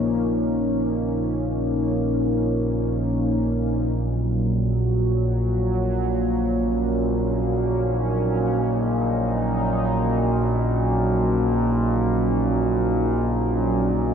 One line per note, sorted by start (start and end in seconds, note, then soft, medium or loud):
0.00 14.14 A#1 medium
0.00 14.14 A#2 medium
0.00 3.89 F3 medium
0.00 3.91 A#3 medium
0.00 3.91 C#4 medium
0.00 3.92 D#4 medium
3.89 14.14 F#3 medium
5.63 14.14 A#3 medium
6.29 14.14 C#4 medium
7.73 14.14 D#4 medium